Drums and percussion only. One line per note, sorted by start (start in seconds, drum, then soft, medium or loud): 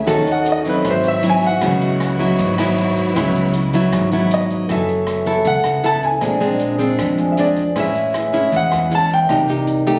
0.08 kick medium
0.08 cross-stick medium
0.08 closed hi-hat soft
0.27 closed hi-hat soft
0.46 closed hi-hat soft
0.65 kick soft
0.65 closed hi-hat soft
0.85 kick medium
0.85 cross-stick medium
0.85 closed hi-hat soft
1.03 closed hi-hat soft
1.23 closed hi-hat soft
1.42 kick soft
1.42 closed hi-hat soft
1.61 kick medium
1.61 cross-stick medium
1.61 closed hi-hat soft
1.81 closed hi-hat soft
2.00 cross-stick medium
2.00 closed hi-hat soft
2.19 kick soft
2.19 closed hi-hat soft
2.39 kick medium
2.39 closed hi-hat soft
2.58 cross-stick medium
2.58 closed hi-hat soft
2.78 closed hi-hat soft
2.96 kick soft
2.96 closed hi-hat soft
3.16 kick medium
3.16 cross-stick medium
3.16 closed hi-hat soft
3.35 closed hi-hat soft
3.54 closed hi-hat soft
3.73 kick soft
3.73 closed hi-hat soft
3.92 kick medium
3.92 cross-stick medium
3.92 closed hi-hat medium
4.12 closed hi-hat soft
4.31 closed hi-hat soft
4.50 kick soft
4.50 closed hi-hat soft
4.69 kick soft
4.69 cross-stick soft
4.69 closed hi-hat soft
4.89 closed hi-hat soft
5.07 cross-stick soft
5.07 closed hi-hat soft
5.26 kick soft
5.26 closed hi-hat soft
5.45 kick medium
5.45 closed hi-hat soft
5.64 cross-stick medium
5.64 closed hi-hat soft
5.84 closed hi-hat soft
6.03 kick soft
6.03 closed hi-hat soft
6.21 kick medium
6.21 cross-stick soft
6.21 closed hi-hat soft
6.41 closed hi-hat soft
6.60 closed hi-hat soft
6.80 kick soft
6.80 closed hi-hat soft
6.99 kick medium
6.99 cross-stick medium
6.99 closed hi-hat soft
7.18 closed hi-hat soft
7.37 closed hi-hat soft
7.56 kick soft
7.56 closed hi-hat soft
7.76 kick soft
7.76 cross-stick soft
7.76 closed hi-hat soft
7.95 closed hi-hat soft
8.14 cross-stick medium
8.14 closed hi-hat soft
8.33 kick soft
8.33 closed hi-hat soft
8.52 kick medium
8.52 closed hi-hat soft
8.72 cross-stick medium
8.72 closed hi-hat soft
8.92 closed hi-hat soft
9.10 kick soft
9.10 closed hi-hat soft
9.29 kick soft
9.29 cross-stick soft
9.29 closed hi-hat soft
9.48 closed hi-hat soft
9.67 closed hi-hat soft
9.87 kick soft
9.87 closed hi-hat soft